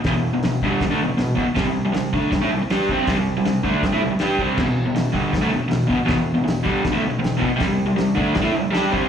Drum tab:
CC |--------|--------|--------|x-------|
HH |o-o-o-o-|o-o-o-o-|o-o-o-o-|--o-o-o-|
SD |o-o-o-o-|o-o-o-o-|o-o-o-o-|o-o-o-o-|
BD |o--oo--o|o--oo--o|o--oo--o|o--oo--o|

CC |--------|--------|
HH |o-o-o-o-|o-o-o-o-|
SD |o-o-o-o-|o-o-o-o-|
BD |o--oo--o|o--oo--o|